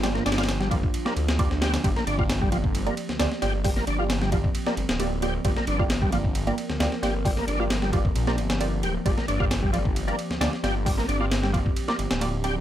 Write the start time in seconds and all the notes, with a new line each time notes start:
Already playing: G1 F3 A#3 D4 F4
0.03 G3 A#3 F4 G4 D5, snare, ride
0.15 A#3, snare
0.26 G1 D4, snare, ride
0.32 snare, ride
0.38 A#3 F4 G4 D5, snare, ride
0.43 snare, ride
0.49 snare, ride
0.60 G3, snare
0.71 F3 A#3 F4 G4 D5, kick, ride
0.83 kick
0.94 ride
1.05 A#3 F4 G4 D5, snare
1.16 D2, ride
1.28 snare
1.39 A#3 F4 G4 D5, kick, ride
1.51 snare
1.61 A#3 F4 G4 D5, snare, ride
1.74 snare, ride
1.84 G1 G3 A#3 C4 F4 G4 D5, kick, ride
1.96 A#3, snare
2.07 G1 D4, ride
2.19 A#3 F4 G4 D5, kick
2.29 snare, ride
2.41 G3, kick
2.52 F3 A#3 F4 G4 D5, ride
2.64 kick
2.75 ride
2.87 A#3 F4 G4 D5, ride
2.97 ride
3.09 D2, snare
3.19 D2 A#3 F4 G4 D5, snare, ride
3.32 snare
3.42 G1 A#3 F4 G4 D5, snare, ride
3.64 G3 A#3 F4 G4 D5, kick, open hi-hat
3.77 A#3, snare
3.87 G1 D4, ride
3.99 A#3 F4 G4 D5
4.10 snare, ride
4.22 G3, snare
4.32 F3 A#3 F4 G4 D5, kick, ride
4.44 kick
4.55 ride
4.67 A#3 F4 G4 D5, snare
4.77 G1, ride
4.89 D1, snare
5.00 A#3 F4 G4 D5, ride
5.22 A#3 F4 G4 D5, ride
5.45 G1 G3 A#3 F4 G4 A#4 D5, kick, ride
5.57 A#3, snare
5.67 G1 D4, ride
5.79 A#3 F4 G4 D5, kick
5.90 snare, ride
6.02 G3, kick
6.12 F3 A#3 F4 G4 D5, ride
6.24 kick
6.35 ride
6.47 A#3 F4 G4 D5, ride
6.58 ride
6.69 D2, snare
6.80 D2 A#3 F4 G4 D5, snare, ride
6.92 snare
7.03 G1 A#3 F4 G4 D5, snare, ride
7.25 G3 A#3 F4 G4 D5, kick, open hi-hat
7.37 A#3, snare
7.48 G1 D4, ride
7.60 A#3 F4 G4 D5
7.70 snare, ride
7.82 G3, snare
7.93 F3 A#3 F4 G4 D5, kick, ride
8.05 kick
8.15 A#1, ride
8.27 A#3 F4 G4 D5, snare
8.38 G1, ride
8.50 snare
8.60 A#3 F4 G4 D5, ride
8.83 D1 G4, ride
9.06 G1 G3 A#3 F4 G4 D5, kick, ride
9.17 A#3, snare
9.28 G1 D4, ride
9.40 A#3 F4 G4 D5, kick
9.51 snare, ride
9.62 G3, kick
9.73 F3 A#3 F4 G4 D5, ride
9.85 kick
9.96 ride
10.08 A#3 F4 G4 D5, ride
10.19 ride
10.30 D2, snare
10.41 D2 A#3 F4 G4 D5, snare, ride
10.53 snare
10.63 G1 A#3 F4 G4 D5, snare, ride
10.86 G3 A#3 F4 G4 D5, kick, open hi-hat
10.98 A#3, snare
11.08 G1 D4, ride
11.20 A#3 F4 G4 D5
11.32 snare, ride
11.43 G3, snare
11.53 F3 A#3 F4 G4 D5, kick, ride
11.66 kick
11.76 ride
11.88 A#3 F4 G4 D5, snare
11.99 G1, ride
12.11 D1, snare
12.21 A#3 F4 G4 D5, ride
12.44 A#3 F4 G4 D5, ride